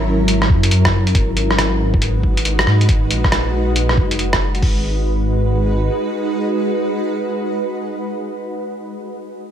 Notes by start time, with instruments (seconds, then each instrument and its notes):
Already playing: detuned saw bass G#1, ambient pad F#3 C#4 E4 A#4
0.28 closed hi-hat
0.42 cross-stick
0.50 detuned saw bass F#2, kick
0.63 closed hi-hat
0.71 detuned saw bass F#2, closed hi-hat
0.85 kick, cross-stick
1.07 closed hi-hat
1.15 detuned saw bass G#1, ambient pad G#3 D#4 F#4 B4, kick, closed hi-hat
1.37 closed hi-hat
1.51 cross-stick
1.59 cross-stick, closed hi-hat
1.94 kick
2.02 closed hi-hat
2.23 kick
2.37 closed hi-hat
2.45 closed hi-hat
2.59 cross-stick
2.67 detuned saw bass G#2, cross-stick
2.81 closed hi-hat
2.89 detuned saw bass G#1, kick, closed hi-hat
3.10 detuned saw bass A#1, closed hi-hat
3.24 kick, cross-stick
3.32 cross-stick, closed hi-hat
3.76 closed hi-hat
3.89 cross-stick
3.97 detuned saw bass F#1, kick
4.11 closed hi-hat
4.19 closed hi-hat
4.33 kick, cross-stick
4.55 closed hi-hat
4.62 detuned saw bass G#1, ambient pad G#3 D#4 F#4 B4, kick, open hi-hat